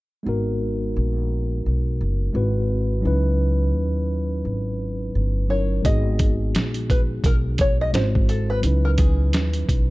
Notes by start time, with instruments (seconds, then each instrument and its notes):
0.23 upright bass G#1, tine electric piano G#3 B3 D#4
0.27 tine electric piano F#4 A#4
0.96 upright bass A#1
1.66 upright bass B1
2.01 upright bass F#1
2.33 upright bass G#1, tine electric piano G#3 C4 E4 F#4 B4
3.01 tine electric piano F#3 C#4 D#4
3.05 upright bass C#2, tine electric piano E4 B4
3.75 upright bass D#2
4.45 upright bass G#1
5.15 upright bass G1
5.48 tine electric piano F#3 C#4 D#4 E4 A#4, five-string banjo C#5
5.82 upright bass G#1, tine electric piano G#3 B3 D#4, five-string banjo D#5, kick, closed hi-hat
5.86 tine electric piano F#4 G#4
6.19 kick, closed hi-hat
6.55 upright bass A#1, snare, closed hi-hat
6.74 closed hi-hat
6.90 five-string banjo B4, kick, closed hi-hat
7.24 upright bass B1, five-string banjo A#4, kick, closed hi-hat
7.58 five-string banjo C#5, kick, closed hi-hat
7.81 five-string banjo D#5
7.92 upright bass G#1, tine electric piano G#3 C4 E4 F#4 C5, five-string banjo C5, snare, closed hi-hat
8.15 kick
8.29 five-string banjo A4, closed hi-hat
8.50 five-string banjo B4
8.61 upright bass C#2, tine electric piano F#3 C#4 D#4, closed hi-hat
8.66 tine electric piano E4 B4
8.85 five-string banjo A#4
8.98 five-string banjo G#4, kick, closed hi-hat
9.33 upright bass D#2, snare, closed hi-hat
9.53 closed hi-hat
9.69 upright bass B1, kick, closed hi-hat